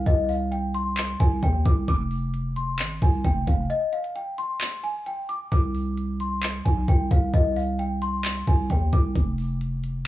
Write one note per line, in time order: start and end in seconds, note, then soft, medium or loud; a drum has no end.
0.06 1.16 C2 loud
0.06 0.28 D#5 loud
0.06 kick loud
0.06 closed hi-hat medium
0.29 0.50 F5 medium
0.29 open hi-hat medium
0.52 0.73 G5 medium
0.52 closed hi-hat medium
0.74 1.17 C6 medium
0.74 closed hi-hat medium
0.97 clap loud
0.97 closed hi-hat medium
1.20 1.42 C2 loud
1.20 1.41 G#5 medium
1.20 kick medium
1.20 closed hi-hat medium
1.43 1.65 D#2 loud
1.43 1.64 G5 medium
1.43 kick loud
1.43 closed hi-hat medium
1.65 1.87 C2 loud
1.65 1.87 D6 medium
1.65 kick loud
1.65 closed hi-hat medium
1.88 2.81 F1 loud
1.88 2.53 D6 loud
1.88 kick loud
1.88 closed hi-hat medium
2.11 open hi-hat medium
2.34 closed hi-hat medium
2.56 2.78 C6 medium
2.56 closed hi-hat medium
2.79 3.01 G#1 loud
2.79 clap loud
2.79 closed hi-hat medium
3.02 3.24 C2 loud
3.02 3.23 G#5 medium
3.02 kick medium
3.02 closed hi-hat medium
3.24 3.46 F1 loud
3.24 3.46 G5 medium
3.24 kick loud
3.24 closed hi-hat medium
3.47 3.69 F1 loud
3.47 3.69 F5 medium
3.47 kick loud
3.47 closed hi-hat medium
3.70 3.91 D#5 loud
3.70 closed hi-hat medium
3.92 4.14 F5 medium
3.92 closed hi-hat medium
3.92 open hi-hat medium
4.04 closed hi-hat medium
4.16 4.37 G5 medium
4.16 closed hi-hat medium
4.38 4.81 C6 medium
4.38 closed hi-hat medium
4.61 clap loud
4.61 closed hi-hat medium
4.84 5.05 G#5 medium
4.84 closed hi-hat medium
5.06 5.28 G5 medium
5.06 closed hi-hat medium
5.29 5.50 D6 medium
5.29 closed hi-hat medium
5.52 6.62 C2 loud
5.52 6.16 D6 loud
5.52 kick loud
5.52 closed hi-hat medium
5.75 open hi-hat medium
5.97 closed hi-hat medium
6.20 6.42 C6 medium
6.20 closed hi-hat medium
6.43 clap loud
6.43 closed hi-hat medium
6.65 6.87 B1 loud
6.65 6.87 G#5 medium
6.65 kick medium
6.65 closed hi-hat medium
6.88 7.10 C2 loud
6.88 7.10 G5 medium
6.88 kick loud
6.88 closed hi-hat medium
7.11 7.33 C2 loud
7.11 7.32 F5 medium
7.11 kick loud
7.11 closed hi-hat medium
7.34 8.43 C2 loud
7.34 7.55 D#5 loud
7.34 kick loud
7.34 closed hi-hat medium
7.56 7.78 F5 medium
7.56 open hi-hat medium
7.79 8.00 G5 medium
7.79 closed hi-hat medium
8.02 8.45 C6 medium
8.02 closed hi-hat medium
8.25 clap loud
8.25 closed hi-hat medium
8.47 8.69 C2 loud
8.47 8.69 G#5 medium
8.47 kick medium
8.47 closed hi-hat medium
8.70 8.92 D#2 loud
8.70 8.92 G5 medium
8.70 kick loud
8.70 closed hi-hat medium
8.93 9.15 C2 loud
8.93 9.14 D6 medium
8.93 kick medium
8.93 closed hi-hat medium
9.16 10.07 F1 loud
9.16 kick loud
9.16 closed hi-hat medium
9.38 open hi-hat medium
9.61 closed hi-hat medium
9.84 closed hi-hat medium